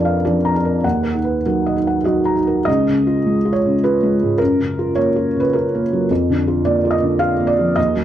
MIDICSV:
0, 0, Header, 1, 2, 480
1, 0, Start_track
1, 0, Tempo, 600000
1, 670, Time_signature, 3, 2, 24, 8
1, 2601, Tempo, 564972
1, 6673, End_track
2, 0, Start_track
2, 0, Title_t, "Felt piano"
2, 0, Program_c, 0, 0
2, 0, Control_c, 0, 64, 127
2, 0, Note_on_c, 0, 41, 61
2, 0, Note_on_c, 0, 53, 42
2, 0, Note_on_c, 0, 62, 43
2, 0, Note_on_c, 0, 70, 47
2, 0, Note_on_c, 0, 71, 44
2, 0, Note_on_c, 0, 74, 47
2, 0, Note_on_c, 0, 77, 53
2, 39, Note_off_c, 0, 77, 0
2, 39, Note_on_c, 0, 77, 49
2, 132, Note_off_c, 0, 74, 0
2, 170, Note_off_c, 0, 62, 0
2, 198, Note_on_c, 0, 74, 45
2, 202, Note_off_c, 0, 53, 0
2, 202, Note_on_c, 0, 53, 40
2, 205, Note_on_c, 0, 62, 40
2, 286, Note_off_c, 0, 77, 0
2, 359, Note_on_c, 0, 82, 48
2, 410, Note_off_c, 0, 53, 0
2, 412, Note_off_c, 0, 62, 0
2, 439, Note_on_c, 0, 62, 37
2, 447, Note_off_c, 0, 74, 0
2, 519, Note_off_c, 0, 70, 0
2, 519, Note_on_c, 0, 70, 37
2, 610, Note_off_c, 0, 82, 0
2, 652, Note_off_c, 0, 62, 0
2, 671, Note_on_c, 0, 39, 49
2, 673, Note_on_c, 0, 78, 48
2, 675, Note_off_c, 0, 70, 0
2, 685, Control_c, 0, 64, 0
2, 688, Note_off_c, 0, 41, 0
2, 693, Note_off_c, 0, 71, 0
2, 815, Control_c, 0, 64, 127
2, 825, Note_on_c, 0, 70, 38
2, 905, Note_off_c, 0, 39, 0
2, 907, Note_on_c, 0, 63, 34
2, 930, Note_off_c, 0, 78, 0
2, 992, Note_on_c, 0, 71, 36
2, 1086, Note_off_c, 0, 70, 0
2, 1126, Note_off_c, 0, 63, 0
2, 1153, Note_off_c, 0, 71, 0
2, 1167, Note_on_c, 0, 70, 39
2, 1168, Note_on_c, 0, 54, 33
2, 1169, Note_on_c, 0, 63, 36
2, 1331, Note_on_c, 0, 75, 38
2, 1378, Note_off_c, 0, 54, 0
2, 1379, Note_off_c, 0, 63, 0
2, 1411, Note_on_c, 0, 63, 33
2, 1418, Note_off_c, 0, 70, 0
2, 1497, Note_on_c, 0, 78, 39
2, 1580, Note_off_c, 0, 75, 0
2, 1621, Note_off_c, 0, 63, 0
2, 1633, Note_on_c, 0, 66, 51
2, 1643, Note_on_c, 0, 75, 38
2, 1648, Note_on_c, 0, 54, 32
2, 1650, Note_on_c, 0, 63, 35
2, 1744, Note_off_c, 0, 78, 0
2, 1803, Note_on_c, 0, 82, 40
2, 1867, Note_off_c, 0, 54, 0
2, 1868, Note_off_c, 0, 63, 0
2, 1887, Note_on_c, 0, 63, 32
2, 1906, Note_off_c, 0, 75, 0
2, 1977, Note_on_c, 0, 70, 37
2, 2071, Note_off_c, 0, 82, 0
2, 2111, Note_off_c, 0, 63, 0
2, 2121, Note_on_c, 0, 75, 85
2, 2133, Note_off_c, 0, 66, 0
2, 2138, Note_off_c, 0, 70, 0
2, 2139, Note_on_c, 0, 37, 48
2, 2151, Control_c, 0, 64, 0
2, 2282, Control_c, 0, 64, 127
2, 2302, Note_on_c, 0, 49, 38
2, 2456, Note_on_c, 0, 65, 39
2, 2545, Note_off_c, 0, 49, 0
2, 2613, Note_on_c, 0, 56, 38
2, 2703, Note_off_c, 0, 65, 0
2, 2772, Note_on_c, 0, 65, 39
2, 2835, Note_on_c, 0, 73, 57
2, 2838, Note_off_c, 0, 75, 0
2, 2867, Note_off_c, 0, 56, 0
2, 2946, Note_on_c, 0, 49, 37
2, 3027, Note_off_c, 0, 65, 0
2, 3082, Note_off_c, 0, 73, 0
2, 3098, Note_on_c, 0, 71, 67
2, 3107, Note_on_c, 0, 65, 40
2, 3194, Note_off_c, 0, 49, 0
2, 3263, Note_on_c, 0, 56, 40
2, 3355, Note_off_c, 0, 65, 0
2, 3431, Note_on_c, 0, 44, 33
2, 3513, Note_off_c, 0, 56, 0
2, 3539, Note_off_c, 0, 37, 0
2, 3563, Note_on_c, 0, 70, 71
2, 3576, Note_off_c, 0, 71, 0
2, 3582, Note_off_c, 0, 44, 0
2, 3583, Note_on_c, 0, 42, 50
2, 3588, Control_c, 0, 64, 0
2, 3737, Control_c, 0, 64, 127
2, 3747, Note_on_c, 0, 49, 37
2, 3907, Note_on_c, 0, 65, 40
2, 4000, Note_off_c, 0, 49, 0
2, 4049, Note_on_c, 0, 73, 74
2, 4053, Note_off_c, 0, 70, 0
2, 4067, Note_on_c, 0, 58, 39
2, 4159, Note_off_c, 0, 65, 0
2, 4223, Note_on_c, 0, 65, 36
2, 4319, Note_off_c, 0, 58, 0
2, 4396, Note_on_c, 0, 49, 37
2, 4414, Note_off_c, 0, 73, 0
2, 4426, Note_on_c, 0, 71, 62
2, 4477, Note_off_c, 0, 65, 0
2, 4539, Note_on_c, 0, 70, 60
2, 4543, Note_off_c, 0, 71, 0
2, 4558, Note_on_c, 0, 65, 38
2, 4643, Note_off_c, 0, 49, 0
2, 4723, Note_on_c, 0, 58, 38
2, 4778, Note_off_c, 0, 70, 0
2, 4803, Note_off_c, 0, 65, 0
2, 4877, Note_on_c, 0, 54, 36
2, 4965, Note_off_c, 0, 58, 0
2, 4989, Note_off_c, 0, 42, 0
2, 5026, Note_on_c, 0, 41, 50
2, 5027, Note_off_c, 0, 54, 0
2, 5034, Control_c, 0, 64, 0
2, 5190, Note_on_c, 0, 50, 37
2, 5191, Control_c, 0, 64, 127
2, 5341, Note_on_c, 0, 65, 39
2, 5439, Note_off_c, 0, 50, 0
2, 5488, Note_on_c, 0, 74, 72
2, 5496, Note_on_c, 0, 58, 42
2, 5592, Note_off_c, 0, 65, 0
2, 5655, Note_on_c, 0, 65, 41
2, 5706, Note_on_c, 0, 75, 67
2, 5727, Note_off_c, 0, 74, 0
2, 5747, Note_off_c, 0, 58, 0
2, 5805, Note_on_c, 0, 50, 36
2, 5905, Note_off_c, 0, 65, 0
2, 5949, Note_on_c, 0, 77, 71
2, 5954, Note_off_c, 0, 75, 0
2, 5963, Note_on_c, 0, 65, 42
2, 6059, Note_off_c, 0, 50, 0
2, 6124, Note_on_c, 0, 58, 40
2, 6185, Note_on_c, 0, 74, 73
2, 6195, Note_off_c, 0, 77, 0
2, 6218, Note_off_c, 0, 65, 0
2, 6286, Note_on_c, 0, 53, 38
2, 6379, Note_off_c, 0, 58, 0
2, 6413, Note_off_c, 0, 41, 0
2, 6429, Note_on_c, 0, 75, 81
2, 6433, Note_off_c, 0, 74, 0
2, 6441, Note_on_c, 0, 39, 53
2, 6444, Note_off_c, 0, 53, 0
2, 6457, Control_c, 0, 64, 0
2, 6579, Control_c, 0, 64, 127
2, 6599, Note_on_c, 0, 54, 40
2, 6673, Note_off_c, 0, 39, 0
2, 6673, Note_off_c, 0, 54, 0
2, 6673, Note_off_c, 0, 75, 0
2, 6673, End_track
0, 0, End_of_file